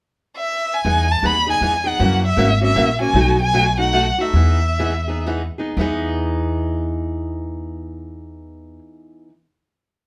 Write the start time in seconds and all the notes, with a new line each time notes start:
0.37 E5
0.74 G#5
0.85 E2 E3 B3 D#4 G#4
1.11 A5
1.23 D#2 E3 B3 D#4 G#4 B5
1.47 B3 D#4 G#4 G#5
1.61 E2 E3 B3 D#4 G#4
1.84 B3 D#4 G#4 F#5
1.99 F#2 C#3 E3 A#3 C#4 F#4
2.26 E5
2.37 G#1 C#3 E3 A#3 C#4 F#4
2.61 A#3 C#4 F#4 E5
2.75 A#1 C#3 E3 A#3 C#4 F#4
3.00 A#3 C#4 F#4 G#5
3.13 B1 B2 F#3 A3 D#4 F#4
3.42 G#5
3.53 B2 F#3 A3 D#4 F#4
3.78 A3 D#4 F#4 F#5
3.92 B2 F#3 A3 D#4 F#4
4.18 A3 D#4 F#4 E5
4.33 E2 E3 B3 D#4 G#4
4.79 E3 B3 D#4 G#4
5.08 B3 D#4 G#4
5.26 E3 B3 D#4 G#4
5.58 B3 D#4 G#4
5.77 E2 E3 B3 D#4
5.81 G#4